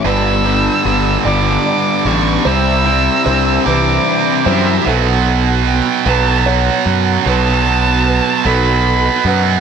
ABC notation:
X:1
M:6/8
L:1/8
Q:3/8=50
K:Bm
V:1 name="Violin"
e'3 d'2 c' | e'3 d'2 e | f2 g a f2 | a3 b2 f |]
V:2 name="Felt piano"
B2 z d d2 | =c2 c B2 c | A2 z B c2 | B2 B A2 B |]
V:3 name="Clean electric guitar"
G,, D B, D, B, D | =C, E D E, D E | z6 | z6 |]
V:4 name="Overdriven electric guitar" clef=bass
[G,,D,G,B,D] [G,,D,G,B,D] [G,,D,G,B,D] [G,,D,G,B,D]2 [G,,D,G,B,D] | [=C,G,=CE] [C,G,CE] [C,G,CE] [C,G,CE]2 [C,G,CE] | z6 | z6 |]
V:5 name="Distorted electric guitar" clef=bass
[G,,D,G,] [G,,D,G,] [G,,D,G,] [G,,D,G,]2 [G,,D,G,] | [=C,G,=C] [C,G,C] [C,G,C] [C,G,C]2 [C,G,C] | [B,,F,B,]3 [B,,F,B,]3 | [B,,F,B,]3 [B,,F,B,]3 |]
V:6 name="Picked electric bass" clef=bass
G,,,2 G,,, G,,, z A,,, | =C,,2 C,, C,, z F,, | B,,,3 B,,,2 F,, | B,,,3 B,,,2 F,, |]